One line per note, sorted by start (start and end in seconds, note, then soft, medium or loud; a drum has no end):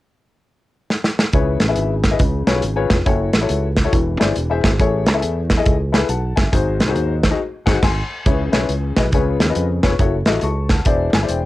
0.90 snare medium
1.04 snare medium
1.19 snare medium
1.33 1.57 C#2 medium
1.33 2.01 C#3 medium
1.33 1.56 E4 medium
1.33 1.57 G#4 medium
1.33 1.57 B4 medium
1.33 1.57 C#5 medium
1.33 kick loud
1.33 closed hi-hat medium
1.60 1.74 A1 medium
1.60 snare medium
1.60 closed hi-hat medium
1.68 1.93 E4 medium
1.68 1.93 G#4 medium
1.68 1.93 B4 medium
1.68 1.93 E5 medium
1.76 2.14 G#1 medium
1.76 closed hi-hat medium
2.04 kick medium
2.04 snare medium
2.04 closed hi-hat medium
2.11 2.20 E4 medium
2.11 2.20 G#4 medium
2.11 2.20 B4 medium
2.11 2.20 D#5 medium
2.19 2.43 C#2 medium
2.19 2.87 C#3 medium
2.19 kick medium
2.19 closed hi-hat medium
2.47 2.61 B1 medium
2.47 2.60 F4 medium
2.47 2.61 G#4 medium
2.47 2.61 B4 medium
2.47 2.61 C#5 medium
2.47 snare loud
2.47 closed hi-hat medium
2.62 2.86 G#1 medium
2.62 closed hi-hat medium
2.76 2.96 F4 medium
2.76 2.95 G#4 medium
2.76 2.96 B4 medium
2.76 2.96 C#5 medium
2.90 3.04 F1 medium
2.90 kick loud
2.90 snare loud
2.90 closed hi-hat medium
3.06 3.30 F#1 loud
3.06 3.29 E4 medium
3.06 3.29 F#4 medium
3.06 3.29 A4 medium
3.06 3.29 C#5 medium
3.06 kick loud
3.06 closed hi-hat medium
3.33 3.47 A1 medium
3.33 snare loud
3.33 closed hi-hat medium
3.41 3.66 E4 medium
3.41 3.66 F#4 medium
3.41 3.66 A4 medium
3.41 3.67 C#5 medium
3.49 3.87 C#2 medium
3.49 closed hi-hat medium
3.77 kick medium
3.77 snare loud
3.77 closed hi-hat medium
3.84 3.93 E4 medium
3.84 3.93 F#4 medium
3.84 3.93 A4 medium
3.84 3.93 C#5 medium
3.92 4.16 E1 loud
3.92 4.60 E3 medium
3.92 kick loud
3.92 closed hi-hat medium
4.19 4.34 G1 medium
4.19 4.33 E4 medium
4.19 4.33 G#4 medium
4.19 4.33 C5 medium
4.19 4.33 D5 medium
4.19 snare loud
4.19 closed hi-hat medium
4.36 4.60 E1 medium
4.36 closed hi-hat medium
4.50 4.69 E4 medium
4.50 4.69 G#4 medium
4.50 4.69 C5 medium
4.50 4.69 E5 medium
4.64 4.78 G#1 medium
4.64 kick medium
4.64 snare loud
4.64 closed hi-hat medium
4.79 5.08 A1 loud
4.79 5.47 A2 medium
4.79 5.03 E4 medium
4.79 5.03 G#4 medium
4.79 5.03 A4 medium
4.79 5.03 C#5 medium
4.79 kick loud
4.79 closed hi-hat medium
5.06 5.21 C#2 medium
5.06 snare loud
5.06 closed hi-hat medium
5.14 5.39 E4 medium
5.14 5.39 G#4 medium
5.14 5.39 A4 medium
5.14 5.39 E5 medium
5.22 5.60 E2 medium
5.22 closed hi-hat medium
5.50 kick medium
5.50 snare loud
5.50 closed hi-hat medium
5.57 5.75 E4 medium
5.57 5.75 G#4 medium
5.57 5.75 A4 medium
5.57 5.75 D#5 medium
5.66 6.03 C#2 medium
5.66 kick loud
5.66 closed hi-hat medium
5.92 6.06 E4 medium
5.92 6.06 G#4 medium
5.92 6.06 A4 medium
5.92 6.06 B4 medium
5.92 snare loud
5.92 closed hi-hat medium
6.09 6.33 B1 medium
6.09 6.35 F#5 medium
6.09 6.35 A5 medium
6.09 closed hi-hat medium
6.36 6.51 G1 medium
6.36 6.78 E5 medium
6.36 6.77 G#5 medium
6.36 kick loud
6.36 snare loud
6.36 closed hi-hat medium
6.52 6.81 G#1 loud
6.52 7.19 G#2 medium
6.52 6.75 D#4 medium
6.52 6.75 F#4 medium
6.52 6.75 G#4 medium
6.52 6.75 C5 medium
6.52 kick loud
6.52 closed hi-hat medium
6.80 6.93 C2 medium
6.80 snare medium
6.80 closed hi-hat medium
6.88 7.12 D#4 medium
6.88 7.12 F#4 medium
6.88 7.12 G#4 medium
6.88 7.13 C5 medium
6.95 7.32 D#2 medium
6.95 closed hi-hat medium
7.23 7.38 C5 medium
7.23 kick medium
7.23 snare loud
7.23 closed hi-hat medium
7.31 7.39 D#4 medium
7.31 7.39 F#4 medium
7.31 7.39 G#4 medium
7.31 7.39 D#5 medium
7.66 7.77 G#1 medium
7.66 7.77 D#4 medium
7.66 7.77 F#4 medium
7.66 7.77 G#4 medium
7.66 7.77 C5 medium
7.66 7.77 F#5 medium
7.66 kick loud
7.66 snare medium
7.66 crash medium
7.83 8.01 G#1 medium
7.83 8.02 G#5 loud
7.83 8.01 C6 medium
7.83 kick loud
7.83 snare medium
7.83 crash medium
8.26 8.49 C#2 loud
8.26 8.93 C#3 medium
8.26 8.41 E4 medium
8.26 8.41 G#4 medium
8.26 8.41 B4 medium
8.26 8.42 C#5 medium
8.26 kick loud
8.26 closed hi-hat medium
8.52 8.66 B1 medium
8.52 8.71 E4 medium
8.52 8.72 G#4 medium
8.52 8.72 B4 medium
8.52 8.72 C#5 medium
8.52 snare medium
8.52 closed hi-hat medium
8.69 8.92 C#2 medium
8.69 closed hi-hat medium
8.97 9.13 B1 medium
8.97 9.06 E4 medium
8.97 9.06 G#4 medium
8.97 9.06 B4 medium
8.97 9.06 D#5 medium
8.97 kick medium
8.97 snare loud
8.97 closed hi-hat medium
9.12 9.36 C#2 loud
9.12 9.80 C#3 medium
9.12 9.36 F4 medium
9.12 9.36 G#4 medium
9.12 9.36 B4 medium
9.12 9.36 C#5 medium
9.12 kick loud
9.12 closed hi-hat medium
9.40 9.54 D#2 medium
9.40 snare medium
9.40 closed hi-hat medium
9.49 9.65 F4 medium
9.49 9.66 G#4 medium
9.49 9.66 B4 medium
9.49 9.66 D#5 medium
9.55 9.79 F2 medium
9.55 closed hi-hat medium
9.83 9.97 F1 medium
9.83 9.92 F4 medium
9.83 9.92 G#4 medium
9.83 9.92 B4 medium
9.83 9.92 C#5 medium
9.83 kick medium
9.83 snare loud
9.83 closed hi-hat medium
9.99 10.23 F#1 loud
9.99 10.15 E4 medium
9.99 10.15 F#4 medium
9.99 10.15 A4 medium
9.99 10.15 C#5 medium
9.99 kick loud
9.99 closed hi-hat medium
10.26 10.40 A1 medium
10.26 10.46 E4 medium
10.26 10.46 F#4 medium
10.26 10.46 A4 medium
10.26 10.46 D#5 medium
10.26 snare medium
10.26 closed hi-hat medium
10.41 10.79 C#2 medium
10.41 10.69 A5 medium
10.41 10.69 C#6 medium
10.41 closed hi-hat medium
10.69 11.13 F#5 medium
10.69 11.12 A5 medium
10.69 kick medium
10.69 snare medium
10.69 closed hi-hat medium
10.85 11.09 E1 medium
10.85 11.45 E3 medium
10.85 11.09 E4 medium
10.85 11.09 G#4 medium
10.85 11.09 C5 medium
10.85 11.09 D5 medium
10.85 kick loud
10.85 closed hi-hat loud
11.13 11.27 G1 medium
11.13 11.29 G#5 medium
11.13 snare loud
11.13 closed hi-hat medium
11.22 11.39 E4 medium
11.22 11.39 G#4 medium
11.22 11.39 C5 medium
11.22 11.39 D5 medium
11.29 11.45 E1 medium
11.29 11.45 G5 medium
11.29 closed hi-hat medium